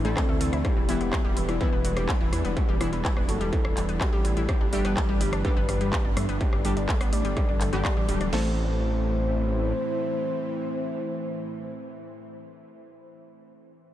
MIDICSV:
0, 0, Header, 1, 8, 480
1, 0, Start_track
1, 0, Key_signature, 0, "minor"
1, 0, Tempo, 480000
1, 647, Time_signature, 4, 2, 24, 8
1, 13939, End_track
2, 0, Start_track
2, 0, Title_t, "Soft synth lead"
2, 0, Program_c, 0, 80
2, 166, Note_on_c, 0, 60, 101
2, 609, Note_off_c, 0, 60, 0
2, 644, Note_on_c, 0, 67, 112
2, 1510, Note_off_c, 0, 67, 0
2, 1604, Note_on_c, 0, 71, 105
2, 2470, Note_off_c, 0, 71, 0
2, 3287, Note_on_c, 0, 69, 99
2, 3911, Note_off_c, 0, 69, 0
2, 4005, Note_on_c, 0, 67, 98
2, 4448, Note_off_c, 0, 67, 0
2, 4487, Note_on_c, 0, 67, 116
2, 5352, Note_off_c, 0, 67, 0
2, 5447, Note_on_c, 0, 71, 109
2, 6311, Note_off_c, 0, 71, 0
2, 7127, Note_on_c, 0, 74, 102
2, 7752, Note_off_c, 0, 74, 0
2, 7847, Note_on_c, 0, 74, 100
2, 8289, Note_off_c, 0, 74, 0
2, 8327, Note_on_c, 0, 72, 113
2, 12927, Note_off_c, 0, 72, 0
2, 13939, End_track
3, 0, Start_track
3, 0, Title_t, "Analog synth pad"
3, 0, Program_c, 1, 89
3, 0, Note_on_c, 1, 57, 86
3, 0, Note_on_c, 1, 60, 80
3, 0, Note_on_c, 1, 64, 79
3, 0, Note_on_c, 1, 74, 78
3, 0, Note_on_c, 1, 76, 92
3, 608, Note_off_c, 1, 57, 0
3, 608, Note_off_c, 1, 60, 0
3, 608, Note_off_c, 1, 76, 0
3, 650, Note_on_c, 1, 71, 76
3, 651, Note_on_c, 1, 55, 82
3, 651, Note_on_c, 1, 62, 78
3, 2550, Note_off_c, 1, 71, 0
3, 2570, Note_on_c, 1, 69, 77
3, 4448, Note_off_c, 1, 64, 0
3, 4451, Note_off_c, 1, 55, 0
3, 4451, Note_off_c, 1, 62, 0
3, 4469, Note_off_c, 1, 69, 0
3, 4485, Note_on_c, 1, 55, 87
3, 4486, Note_on_c, 1, 59, 78
3, 4486, Note_on_c, 1, 62, 74
3, 4487, Note_on_c, 1, 71, 75
3, 6388, Note_off_c, 1, 71, 0
3, 6408, Note_on_c, 1, 69, 76
3, 8288, Note_off_c, 1, 55, 0
3, 8288, Note_off_c, 1, 59, 0
3, 8288, Note_off_c, 1, 62, 0
3, 8288, Note_off_c, 1, 74, 0
3, 8308, Note_off_c, 1, 69, 0
3, 8327, Note_on_c, 1, 72, 77
3, 8327, Note_on_c, 1, 76, 93
3, 8328, Note_on_c, 1, 57, 85
3, 8328, Note_on_c, 1, 60, 78
3, 8328, Note_on_c, 1, 64, 75
3, 12927, Note_off_c, 1, 72, 0
3, 12927, Note_off_c, 1, 76, 0
3, 12928, Note_off_c, 1, 57, 0
3, 12928, Note_off_c, 1, 60, 0
3, 12928, Note_off_c, 1, 64, 0
3, 13939, End_track
4, 0, Start_track
4, 0, Title_t, "Synth stab"
4, 0, Program_c, 2, 62
4, 47, Note_on_c, 2, 64, 80
4, 47, Note_on_c, 2, 69, 90
4, 48, Note_on_c, 2, 57, 86
4, 633, Note_off_c, 2, 57, 0
4, 633, Note_off_c, 2, 64, 0
4, 633, Note_off_c, 2, 69, 0
4, 888, Note_on_c, 2, 52, 91
4, 888, Note_on_c, 2, 59, 85
4, 888, Note_on_c, 2, 64, 105
4, 1579, Note_off_c, 2, 52, 0
4, 1579, Note_off_c, 2, 59, 0
4, 1579, Note_off_c, 2, 64, 0
4, 1607, Note_on_c, 2, 52, 95
4, 1607, Note_on_c, 2, 59, 83
4, 1607, Note_on_c, 2, 64, 99
4, 1705, Note_off_c, 2, 64, 0
4, 1706, Note_off_c, 2, 52, 0
4, 1706, Note_off_c, 2, 59, 0
4, 2807, Note_on_c, 2, 59, 73
4, 2808, Note_on_c, 2, 52, 79
4, 2808, Note_on_c, 2, 64, 87
4, 2906, Note_off_c, 2, 52, 0
4, 2906, Note_off_c, 2, 59, 0
4, 2906, Note_off_c, 2, 64, 0
4, 4727, Note_on_c, 2, 55, 92
4, 4727, Note_on_c, 2, 62, 81
4, 4727, Note_on_c, 2, 67, 103
4, 5418, Note_off_c, 2, 55, 0
4, 5418, Note_off_c, 2, 62, 0
4, 5418, Note_off_c, 2, 67, 0
4, 5448, Note_on_c, 2, 55, 90
4, 5448, Note_on_c, 2, 62, 83
4, 5448, Note_on_c, 2, 67, 99
4, 5546, Note_off_c, 2, 55, 0
4, 5546, Note_off_c, 2, 62, 0
4, 5546, Note_off_c, 2, 67, 0
4, 6648, Note_on_c, 2, 55, 77
4, 6648, Note_on_c, 2, 62, 72
4, 6648, Note_on_c, 2, 67, 83
4, 6746, Note_off_c, 2, 55, 0
4, 6746, Note_off_c, 2, 62, 0
4, 6746, Note_off_c, 2, 67, 0
4, 7729, Note_on_c, 2, 55, 85
4, 7729, Note_on_c, 2, 62, 79
4, 7729, Note_on_c, 2, 67, 97
4, 8313, Note_off_c, 2, 55, 0
4, 8313, Note_off_c, 2, 67, 0
4, 8314, Note_off_c, 2, 62, 0
4, 8327, Note_on_c, 2, 57, 88
4, 8327, Note_on_c, 2, 64, 80
4, 8327, Note_on_c, 2, 69, 94
4, 12981, Note_off_c, 2, 57, 0
4, 12981, Note_off_c, 2, 64, 0
4, 12981, Note_off_c, 2, 69, 0
4, 13939, End_track
5, 0, Start_track
5, 0, Title_t, "Synth arpeggio sound"
5, 0, Program_c, 3, 84
5, 48, Note_on_c, 3, 60, 97
5, 161, Note_off_c, 3, 60, 0
5, 166, Note_on_c, 3, 57, 84
5, 250, Note_off_c, 3, 57, 0
5, 287, Note_on_c, 3, 57, 100
5, 393, Note_off_c, 3, 57, 0
5, 405, Note_on_c, 3, 57, 106
5, 489, Note_off_c, 3, 57, 0
5, 527, Note_on_c, 3, 64, 77
5, 610, Note_off_c, 3, 64, 0
5, 647, Note_on_c, 3, 52, 85
5, 730, Note_off_c, 3, 52, 0
5, 767, Note_on_c, 3, 52, 102
5, 875, Note_off_c, 3, 52, 0
5, 887, Note_on_c, 3, 52, 109
5, 970, Note_off_c, 3, 52, 0
5, 1007, Note_on_c, 3, 59, 74
5, 1090, Note_off_c, 3, 59, 0
5, 1126, Note_on_c, 3, 54, 90
5, 1210, Note_off_c, 3, 54, 0
5, 1246, Note_on_c, 3, 55, 108
5, 1361, Note_off_c, 3, 55, 0
5, 1366, Note_on_c, 3, 52, 78
5, 1450, Note_off_c, 3, 52, 0
5, 1486, Note_on_c, 3, 52, 105
5, 1594, Note_off_c, 3, 52, 0
5, 1606, Note_on_c, 3, 52, 104
5, 1689, Note_off_c, 3, 52, 0
5, 1726, Note_on_c, 3, 59, 78
5, 1809, Note_off_c, 3, 59, 0
5, 1846, Note_on_c, 3, 54, 82
5, 1930, Note_off_c, 3, 54, 0
5, 1965, Note_on_c, 3, 55, 101
5, 2080, Note_off_c, 3, 55, 0
5, 2085, Note_on_c, 3, 52, 83
5, 2169, Note_off_c, 3, 52, 0
5, 2205, Note_on_c, 3, 52, 106
5, 2314, Note_off_c, 3, 52, 0
5, 2326, Note_on_c, 3, 52, 108
5, 2409, Note_off_c, 3, 52, 0
5, 2445, Note_on_c, 3, 59, 80
5, 2529, Note_off_c, 3, 59, 0
5, 2566, Note_on_c, 3, 54, 84
5, 2649, Note_off_c, 3, 54, 0
5, 2687, Note_on_c, 3, 55, 105
5, 2801, Note_off_c, 3, 55, 0
5, 2806, Note_on_c, 3, 52, 83
5, 2890, Note_off_c, 3, 52, 0
5, 2926, Note_on_c, 3, 52, 103
5, 3033, Note_off_c, 3, 52, 0
5, 3045, Note_on_c, 3, 52, 102
5, 3129, Note_off_c, 3, 52, 0
5, 3165, Note_on_c, 3, 59, 81
5, 3249, Note_off_c, 3, 59, 0
5, 3286, Note_on_c, 3, 54, 75
5, 3370, Note_off_c, 3, 54, 0
5, 3406, Note_on_c, 3, 55, 102
5, 3521, Note_off_c, 3, 55, 0
5, 3525, Note_on_c, 3, 52, 85
5, 3609, Note_off_c, 3, 52, 0
5, 3646, Note_on_c, 3, 52, 105
5, 3754, Note_off_c, 3, 52, 0
5, 3766, Note_on_c, 3, 52, 102
5, 3850, Note_off_c, 3, 52, 0
5, 3887, Note_on_c, 3, 59, 77
5, 3970, Note_off_c, 3, 59, 0
5, 4006, Note_on_c, 3, 54, 85
5, 4089, Note_off_c, 3, 54, 0
5, 4126, Note_on_c, 3, 55, 107
5, 4240, Note_off_c, 3, 55, 0
5, 4247, Note_on_c, 3, 52, 80
5, 4330, Note_off_c, 3, 52, 0
5, 4368, Note_on_c, 3, 52, 108
5, 4481, Note_off_c, 3, 52, 0
5, 4488, Note_on_c, 3, 55, 100
5, 4571, Note_off_c, 3, 55, 0
5, 4609, Note_on_c, 3, 62, 76
5, 4691, Note_off_c, 3, 62, 0
5, 4728, Note_on_c, 3, 57, 78
5, 4810, Note_off_c, 3, 57, 0
5, 4848, Note_on_c, 3, 59, 102
5, 4962, Note_off_c, 3, 59, 0
5, 4968, Note_on_c, 3, 55, 86
5, 5050, Note_off_c, 3, 55, 0
5, 5087, Note_on_c, 3, 55, 104
5, 5195, Note_off_c, 3, 55, 0
5, 5207, Note_on_c, 3, 55, 106
5, 5290, Note_off_c, 3, 55, 0
5, 5327, Note_on_c, 3, 62, 80
5, 5410, Note_off_c, 3, 62, 0
5, 5447, Note_on_c, 3, 57, 83
5, 5530, Note_off_c, 3, 57, 0
5, 5567, Note_on_c, 3, 59, 107
5, 5681, Note_off_c, 3, 59, 0
5, 5687, Note_on_c, 3, 55, 83
5, 5770, Note_off_c, 3, 55, 0
5, 5808, Note_on_c, 3, 55, 103
5, 5916, Note_off_c, 3, 55, 0
5, 5928, Note_on_c, 3, 55, 102
5, 6011, Note_off_c, 3, 55, 0
5, 6048, Note_on_c, 3, 62, 79
5, 6130, Note_off_c, 3, 62, 0
5, 6168, Note_on_c, 3, 57, 80
5, 6251, Note_off_c, 3, 57, 0
5, 6289, Note_on_c, 3, 59, 107
5, 6402, Note_off_c, 3, 59, 0
5, 6408, Note_on_c, 3, 55, 80
5, 6491, Note_off_c, 3, 55, 0
5, 6527, Note_on_c, 3, 55, 102
5, 6635, Note_off_c, 3, 55, 0
5, 6647, Note_on_c, 3, 55, 106
5, 6730, Note_off_c, 3, 55, 0
5, 6767, Note_on_c, 3, 62, 74
5, 6850, Note_off_c, 3, 62, 0
5, 6888, Note_on_c, 3, 57, 88
5, 6971, Note_off_c, 3, 57, 0
5, 7008, Note_on_c, 3, 59, 108
5, 7122, Note_off_c, 3, 59, 0
5, 7127, Note_on_c, 3, 55, 83
5, 7210, Note_off_c, 3, 55, 0
5, 7248, Note_on_c, 3, 55, 103
5, 7355, Note_off_c, 3, 55, 0
5, 7367, Note_on_c, 3, 55, 106
5, 7450, Note_off_c, 3, 55, 0
5, 7486, Note_on_c, 3, 62, 82
5, 7570, Note_off_c, 3, 62, 0
5, 7607, Note_on_c, 3, 57, 80
5, 7690, Note_off_c, 3, 57, 0
5, 7726, Note_on_c, 3, 59, 99
5, 7841, Note_off_c, 3, 59, 0
5, 7847, Note_on_c, 3, 55, 84
5, 7930, Note_off_c, 3, 55, 0
5, 7968, Note_on_c, 3, 55, 108
5, 8074, Note_off_c, 3, 55, 0
5, 8086, Note_on_c, 3, 55, 107
5, 8170, Note_off_c, 3, 55, 0
5, 8208, Note_on_c, 3, 62, 77
5, 8290, Note_off_c, 3, 62, 0
5, 8327, Note_on_c, 3, 57, 94
5, 8550, Note_off_c, 3, 57, 0
5, 13939, End_track
6, 0, Start_track
6, 0, Title_t, "Synth drone"
6, 0, Program_c, 4, 95
6, 0, Note_on_c, 4, 45, 80
6, 0, Note_on_c, 4, 52, 85
6, 8315, Note_off_c, 4, 45, 0
6, 8315, Note_off_c, 4, 52, 0
6, 8327, Note_on_c, 4, 45, 82
6, 8327, Note_on_c, 4, 52, 86
6, 12975, Note_off_c, 4, 45, 0
6, 12975, Note_off_c, 4, 52, 0
6, 13939, End_track
7, 0, Start_track
7, 0, Title_t, "Detuned saw bass"
7, 0, Program_c, 5, 39
7, 48, Note_on_c, 5, 33, 97
7, 147, Note_off_c, 5, 33, 0
7, 288, Note_on_c, 5, 38, 87
7, 386, Note_off_c, 5, 38, 0
7, 407, Note_on_c, 5, 38, 102
7, 506, Note_off_c, 5, 38, 0
7, 528, Note_on_c, 5, 38, 89
7, 627, Note_off_c, 5, 38, 0
7, 768, Note_on_c, 5, 28, 85
7, 867, Note_off_c, 5, 28, 0
7, 889, Note_on_c, 5, 28, 100
7, 987, Note_off_c, 5, 28, 0
7, 1009, Note_on_c, 5, 28, 95
7, 1107, Note_off_c, 5, 28, 0
7, 1248, Note_on_c, 5, 28, 86
7, 1347, Note_off_c, 5, 28, 0
7, 1368, Note_on_c, 5, 28, 101
7, 1467, Note_off_c, 5, 28, 0
7, 1488, Note_on_c, 5, 28, 91
7, 1586, Note_off_c, 5, 28, 0
7, 1727, Note_on_c, 5, 28, 86
7, 1826, Note_off_c, 5, 28, 0
7, 1846, Note_on_c, 5, 28, 100
7, 1946, Note_off_c, 5, 28, 0
7, 1968, Note_on_c, 5, 28, 100
7, 2066, Note_off_c, 5, 28, 0
7, 2207, Note_on_c, 5, 28, 89
7, 2306, Note_off_c, 5, 28, 0
7, 2326, Note_on_c, 5, 40, 102
7, 2426, Note_off_c, 5, 40, 0
7, 2446, Note_on_c, 5, 28, 87
7, 2546, Note_off_c, 5, 28, 0
7, 2686, Note_on_c, 5, 28, 84
7, 2786, Note_off_c, 5, 28, 0
7, 2806, Note_on_c, 5, 28, 100
7, 2906, Note_off_c, 5, 28, 0
7, 2927, Note_on_c, 5, 28, 94
7, 3026, Note_off_c, 5, 28, 0
7, 3167, Note_on_c, 5, 28, 88
7, 3266, Note_off_c, 5, 28, 0
7, 3287, Note_on_c, 5, 30, 104
7, 3386, Note_off_c, 5, 30, 0
7, 3407, Note_on_c, 5, 28, 97
7, 3506, Note_off_c, 5, 28, 0
7, 3648, Note_on_c, 5, 28, 84
7, 3747, Note_off_c, 5, 28, 0
7, 3767, Note_on_c, 5, 28, 104
7, 3867, Note_off_c, 5, 28, 0
7, 3889, Note_on_c, 5, 28, 98
7, 3987, Note_off_c, 5, 28, 0
7, 4128, Note_on_c, 5, 33, 92
7, 4226, Note_off_c, 5, 33, 0
7, 4247, Note_on_c, 5, 33, 105
7, 4346, Note_off_c, 5, 33, 0
7, 4368, Note_on_c, 5, 33, 92
7, 4467, Note_off_c, 5, 33, 0
7, 4608, Note_on_c, 5, 31, 84
7, 4706, Note_off_c, 5, 31, 0
7, 4727, Note_on_c, 5, 31, 99
7, 4826, Note_off_c, 5, 31, 0
7, 4849, Note_on_c, 5, 31, 94
7, 4947, Note_off_c, 5, 31, 0
7, 5088, Note_on_c, 5, 31, 87
7, 5187, Note_off_c, 5, 31, 0
7, 5207, Note_on_c, 5, 31, 104
7, 5306, Note_off_c, 5, 31, 0
7, 5328, Note_on_c, 5, 31, 94
7, 5427, Note_off_c, 5, 31, 0
7, 5568, Note_on_c, 5, 31, 87
7, 5666, Note_off_c, 5, 31, 0
7, 5687, Note_on_c, 5, 31, 101
7, 5786, Note_off_c, 5, 31, 0
7, 5806, Note_on_c, 5, 31, 96
7, 5906, Note_off_c, 5, 31, 0
7, 6046, Note_on_c, 5, 31, 85
7, 6146, Note_off_c, 5, 31, 0
7, 6166, Note_on_c, 5, 43, 100
7, 6266, Note_off_c, 5, 43, 0
7, 6287, Note_on_c, 5, 31, 90
7, 6386, Note_off_c, 5, 31, 0
7, 6527, Note_on_c, 5, 31, 82
7, 6626, Note_off_c, 5, 31, 0
7, 6646, Note_on_c, 5, 31, 103
7, 6746, Note_off_c, 5, 31, 0
7, 6768, Note_on_c, 5, 31, 94
7, 6866, Note_off_c, 5, 31, 0
7, 7007, Note_on_c, 5, 31, 92
7, 7106, Note_off_c, 5, 31, 0
7, 7126, Note_on_c, 5, 33, 103
7, 7226, Note_off_c, 5, 33, 0
7, 7248, Note_on_c, 5, 31, 94
7, 7346, Note_off_c, 5, 31, 0
7, 7487, Note_on_c, 5, 31, 86
7, 7586, Note_off_c, 5, 31, 0
7, 7606, Note_on_c, 5, 31, 104
7, 7706, Note_off_c, 5, 31, 0
7, 7726, Note_on_c, 5, 31, 97
7, 7826, Note_off_c, 5, 31, 0
7, 7967, Note_on_c, 5, 33, 90
7, 8066, Note_off_c, 5, 33, 0
7, 8085, Note_on_c, 5, 26, 99
7, 8186, Note_off_c, 5, 26, 0
7, 8207, Note_on_c, 5, 26, 92
7, 8306, Note_off_c, 5, 26, 0
7, 8325, Note_on_c, 5, 33, 93
7, 9726, Note_off_c, 5, 33, 0
7, 13939, End_track
8, 0, Start_track
8, 0, Title_t, "Drums"
8, 48, Note_on_c, 9, 42, 43
8, 148, Note_off_c, 9, 42, 0
8, 167, Note_on_c, 9, 36, 127
8, 167, Note_on_c, 9, 37, 77
8, 167, Note_on_c, 9, 39, 115
8, 167, Note_on_c, 9, 42, 32
8, 267, Note_off_c, 9, 36, 0
8, 267, Note_off_c, 9, 37, 0
8, 267, Note_off_c, 9, 39, 0
8, 267, Note_off_c, 9, 42, 0
8, 407, Note_on_c, 9, 46, 114
8, 507, Note_off_c, 9, 46, 0
8, 528, Note_on_c, 9, 37, 54
8, 528, Note_on_c, 9, 42, 43
8, 628, Note_off_c, 9, 37, 0
8, 628, Note_off_c, 9, 42, 0
8, 647, Note_on_c, 9, 36, 124
8, 648, Note_on_c, 9, 37, 54
8, 648, Note_on_c, 9, 42, 33
8, 747, Note_off_c, 9, 36, 0
8, 748, Note_off_c, 9, 37, 0
8, 748, Note_off_c, 9, 42, 0
8, 887, Note_on_c, 9, 46, 111
8, 987, Note_off_c, 9, 46, 0
8, 1007, Note_on_c, 9, 42, 44
8, 1107, Note_off_c, 9, 42, 0
8, 1127, Note_on_c, 9, 36, 124
8, 1127, Note_on_c, 9, 37, 80
8, 1127, Note_on_c, 9, 39, 113
8, 1127, Note_on_c, 9, 42, 32
8, 1227, Note_off_c, 9, 36, 0
8, 1227, Note_off_c, 9, 37, 0
8, 1227, Note_off_c, 9, 39, 0
8, 1227, Note_off_c, 9, 42, 0
8, 1366, Note_on_c, 9, 46, 112
8, 1466, Note_off_c, 9, 46, 0
8, 1487, Note_on_c, 9, 37, 53
8, 1487, Note_on_c, 9, 42, 44
8, 1587, Note_off_c, 9, 37, 0
8, 1587, Note_off_c, 9, 42, 0
8, 1606, Note_on_c, 9, 42, 33
8, 1607, Note_on_c, 9, 36, 115
8, 1706, Note_off_c, 9, 42, 0
8, 1707, Note_off_c, 9, 36, 0
8, 1846, Note_on_c, 9, 46, 104
8, 1946, Note_off_c, 9, 46, 0
8, 1966, Note_on_c, 9, 37, 79
8, 1966, Note_on_c, 9, 42, 43
8, 2066, Note_off_c, 9, 37, 0
8, 2066, Note_off_c, 9, 42, 0
8, 2086, Note_on_c, 9, 39, 111
8, 2086, Note_on_c, 9, 42, 31
8, 2087, Note_on_c, 9, 36, 126
8, 2186, Note_off_c, 9, 39, 0
8, 2186, Note_off_c, 9, 42, 0
8, 2187, Note_off_c, 9, 36, 0
8, 2327, Note_on_c, 9, 37, 55
8, 2327, Note_on_c, 9, 46, 112
8, 2427, Note_off_c, 9, 37, 0
8, 2427, Note_off_c, 9, 46, 0
8, 2448, Note_on_c, 9, 42, 43
8, 2548, Note_off_c, 9, 42, 0
8, 2567, Note_on_c, 9, 36, 119
8, 2568, Note_on_c, 9, 42, 34
8, 2667, Note_off_c, 9, 36, 0
8, 2668, Note_off_c, 9, 42, 0
8, 2807, Note_on_c, 9, 37, 88
8, 2807, Note_on_c, 9, 46, 103
8, 2907, Note_off_c, 9, 37, 0
8, 2907, Note_off_c, 9, 46, 0
8, 2928, Note_on_c, 9, 42, 47
8, 3028, Note_off_c, 9, 42, 0
8, 3047, Note_on_c, 9, 36, 118
8, 3048, Note_on_c, 9, 39, 109
8, 3048, Note_on_c, 9, 42, 34
8, 3147, Note_off_c, 9, 36, 0
8, 3148, Note_off_c, 9, 39, 0
8, 3148, Note_off_c, 9, 42, 0
8, 3167, Note_on_c, 9, 37, 58
8, 3267, Note_off_c, 9, 37, 0
8, 3287, Note_on_c, 9, 46, 109
8, 3387, Note_off_c, 9, 46, 0
8, 3408, Note_on_c, 9, 42, 44
8, 3508, Note_off_c, 9, 42, 0
8, 3527, Note_on_c, 9, 36, 115
8, 3529, Note_on_c, 9, 42, 35
8, 3627, Note_off_c, 9, 36, 0
8, 3629, Note_off_c, 9, 42, 0
8, 3648, Note_on_c, 9, 37, 88
8, 3748, Note_off_c, 9, 37, 0
8, 3768, Note_on_c, 9, 39, 58
8, 3768, Note_on_c, 9, 46, 105
8, 3868, Note_off_c, 9, 39, 0
8, 3868, Note_off_c, 9, 46, 0
8, 3888, Note_on_c, 9, 42, 47
8, 3988, Note_off_c, 9, 42, 0
8, 4007, Note_on_c, 9, 36, 117
8, 4007, Note_on_c, 9, 37, 55
8, 4007, Note_on_c, 9, 39, 108
8, 4007, Note_on_c, 9, 42, 33
8, 4107, Note_off_c, 9, 36, 0
8, 4107, Note_off_c, 9, 37, 0
8, 4107, Note_off_c, 9, 39, 0
8, 4107, Note_off_c, 9, 42, 0
8, 4247, Note_on_c, 9, 46, 107
8, 4347, Note_off_c, 9, 46, 0
8, 4368, Note_on_c, 9, 42, 45
8, 4468, Note_off_c, 9, 42, 0
8, 4487, Note_on_c, 9, 36, 118
8, 4488, Note_on_c, 9, 37, 86
8, 4488, Note_on_c, 9, 42, 36
8, 4587, Note_off_c, 9, 36, 0
8, 4588, Note_off_c, 9, 37, 0
8, 4588, Note_off_c, 9, 42, 0
8, 4727, Note_on_c, 9, 46, 104
8, 4827, Note_off_c, 9, 46, 0
8, 4848, Note_on_c, 9, 37, 59
8, 4848, Note_on_c, 9, 42, 47
8, 4948, Note_off_c, 9, 37, 0
8, 4948, Note_off_c, 9, 42, 0
8, 4967, Note_on_c, 9, 36, 114
8, 4968, Note_on_c, 9, 39, 114
8, 4968, Note_on_c, 9, 42, 34
8, 5067, Note_off_c, 9, 36, 0
8, 5068, Note_off_c, 9, 39, 0
8, 5068, Note_off_c, 9, 42, 0
8, 5207, Note_on_c, 9, 46, 108
8, 5307, Note_off_c, 9, 46, 0
8, 5327, Note_on_c, 9, 37, 84
8, 5327, Note_on_c, 9, 42, 47
8, 5427, Note_off_c, 9, 37, 0
8, 5427, Note_off_c, 9, 42, 0
8, 5446, Note_on_c, 9, 42, 36
8, 5447, Note_on_c, 9, 36, 116
8, 5546, Note_off_c, 9, 42, 0
8, 5547, Note_off_c, 9, 36, 0
8, 5687, Note_on_c, 9, 37, 57
8, 5687, Note_on_c, 9, 46, 104
8, 5787, Note_off_c, 9, 37, 0
8, 5787, Note_off_c, 9, 46, 0
8, 5808, Note_on_c, 9, 42, 46
8, 5908, Note_off_c, 9, 42, 0
8, 5927, Note_on_c, 9, 36, 116
8, 5928, Note_on_c, 9, 39, 119
8, 5928, Note_on_c, 9, 42, 36
8, 6027, Note_off_c, 9, 36, 0
8, 6028, Note_off_c, 9, 39, 0
8, 6028, Note_off_c, 9, 42, 0
8, 6168, Note_on_c, 9, 37, 85
8, 6168, Note_on_c, 9, 46, 107
8, 6268, Note_off_c, 9, 37, 0
8, 6268, Note_off_c, 9, 46, 0
8, 6288, Note_on_c, 9, 42, 46
8, 6388, Note_off_c, 9, 42, 0
8, 6407, Note_on_c, 9, 36, 118
8, 6407, Note_on_c, 9, 42, 37
8, 6507, Note_off_c, 9, 36, 0
8, 6507, Note_off_c, 9, 42, 0
8, 6528, Note_on_c, 9, 37, 53
8, 6627, Note_off_c, 9, 37, 0
8, 6647, Note_on_c, 9, 46, 106
8, 6747, Note_off_c, 9, 46, 0
8, 6768, Note_on_c, 9, 42, 48
8, 6868, Note_off_c, 9, 42, 0
8, 6887, Note_on_c, 9, 36, 123
8, 6888, Note_on_c, 9, 39, 120
8, 6888, Note_on_c, 9, 42, 36
8, 6987, Note_off_c, 9, 36, 0
8, 6988, Note_off_c, 9, 39, 0
8, 6988, Note_off_c, 9, 42, 0
8, 7007, Note_on_c, 9, 37, 87
8, 7007, Note_on_c, 9, 46, 62
8, 7107, Note_off_c, 9, 37, 0
8, 7107, Note_off_c, 9, 46, 0
8, 7127, Note_on_c, 9, 46, 106
8, 7227, Note_off_c, 9, 46, 0
8, 7248, Note_on_c, 9, 42, 48
8, 7347, Note_off_c, 9, 42, 0
8, 7366, Note_on_c, 9, 37, 59
8, 7366, Note_on_c, 9, 42, 36
8, 7367, Note_on_c, 9, 36, 118
8, 7466, Note_off_c, 9, 37, 0
8, 7466, Note_off_c, 9, 42, 0
8, 7467, Note_off_c, 9, 36, 0
8, 7606, Note_on_c, 9, 39, 61
8, 7606, Note_on_c, 9, 46, 101
8, 7706, Note_off_c, 9, 39, 0
8, 7706, Note_off_c, 9, 46, 0
8, 7727, Note_on_c, 9, 42, 48
8, 7827, Note_off_c, 9, 42, 0
8, 7847, Note_on_c, 9, 36, 119
8, 7847, Note_on_c, 9, 37, 84
8, 7847, Note_on_c, 9, 39, 124
8, 7847, Note_on_c, 9, 42, 34
8, 7947, Note_off_c, 9, 36, 0
8, 7947, Note_off_c, 9, 37, 0
8, 7947, Note_off_c, 9, 39, 0
8, 7947, Note_off_c, 9, 42, 0
8, 8086, Note_on_c, 9, 46, 104
8, 8186, Note_off_c, 9, 46, 0
8, 8207, Note_on_c, 9, 37, 53
8, 8207, Note_on_c, 9, 42, 47
8, 8307, Note_off_c, 9, 37, 0
8, 8307, Note_off_c, 9, 42, 0
8, 8327, Note_on_c, 9, 38, 108
8, 8327, Note_on_c, 9, 49, 92
8, 8427, Note_off_c, 9, 38, 0
8, 8427, Note_off_c, 9, 49, 0
8, 13939, End_track
0, 0, End_of_file